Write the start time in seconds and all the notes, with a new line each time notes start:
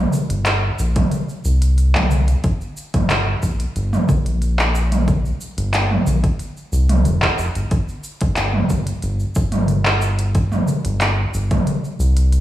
0.13 shaker
0.30 G1, closed hi-hat, shaker
0.46 clap, closed hi-hat, shaker
0.79 A#1, shaker
0.96 kick, closed hi-hat, mid tom, shaker
1.11 closed hi-hat, shaker
1.29 shaker
1.45 C2, shaker
1.62 closed hi-hat, shaker
1.78 closed hi-hat, shaker
1.95 kick, clap, mid tom, shaker
2.11 shaker
2.28 closed hi-hat, shaker
2.44 G1, kick, closed hi-hat, shaker
2.61 shaker
2.77 shaker
2.94 G1, kick, closed hi-hat, mid tom, shaker
3.10 clap, closed hi-hat, shaker
3.43 A#1, kick, shaker
3.60 closed hi-hat, shaker
3.76 G1, closed hi-hat, shaker
3.93 mid tom, shaker
4.09 A#1, kick, shaker
4.26 closed hi-hat, shaker
4.42 closed hi-hat, shaker
4.59 clap, shaker
4.75 shaker
4.92 closed hi-hat, mid tom, shaker
5.08 kick, closed hi-hat, shaker
5.25 shaker
5.41 shaker
5.57 G1, closed hi-hat, shaker
5.74 clap, closed hi-hat, shaker
5.91 mid tom
6.06 A#1, shaker
6.24 kick, closed hi-hat, shaker
6.39 closed hi-hat, shaker
6.57 shaker
6.72 C2, shaker
6.89 closed hi-hat, mid tom, shaker
7.05 F1, closed hi-hat, shaker
7.22 kick, clap, shaker
7.38 F1, shaker
7.55 G1, closed hi-hat, shaker
7.71 G1, kick, closed hi-hat, shaker
7.89 shaker
8.04 shaker
8.21 G1, kick, closed hi-hat, shaker
8.36 clap, closed hi-hat, shaker
8.54 mid tom
8.70 G1, kick, shaker
8.87 closed hi-hat, shaker
9.02 G1, closed hi-hat, shaker
9.20 shaker
9.35 G1, kick, shaker
9.52 closed hi-hat, mid tom, shaker
9.68 closed hi-hat, shaker
9.85 clap, shaker
10.02 shaker
10.19 closed hi-hat, shaker
10.35 kick, closed hi-hat, shaker
10.52 mid tom, shaker
10.68 shaker
10.85 G1, closed hi-hat, shaker
11.01 clap, closed hi-hat, shaker
11.34 G1, shaker
11.51 kick, closed hi-hat, mid tom, shaker
11.67 closed hi-hat, shaker
11.84 shaker
11.99 C2, shaker
12.17 closed hi-hat, shaker
12.32 closed hi-hat, shaker